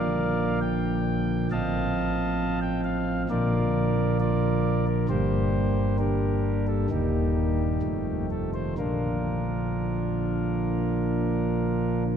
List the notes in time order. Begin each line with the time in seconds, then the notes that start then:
Already playing: A#1 A#2 D3 F3 A#3 A#4 D5 F5
0.61 G5
1.51 A1 A2 F3 C4 D#5 F5 A5
2.62 G5
2.84 F5
3.30 A#1 A#2 D3 F3 A#3 F4 A#4 D5
4.20 F4 A#4 D5
4.87 A#4
5.09 G1 G2 D3 G3 A#3 G4 C5
5.98 D4 G4 A#4
6.67 A4
6.90 D#1 D#2 D#3 G3 A#3 D#4 G4
7.82 F1 F2 D#3 F3 A3
8.31 A4
8.54 C5
8.78 A#1 A#2 D3 F3 A#3 D4 F4 A#4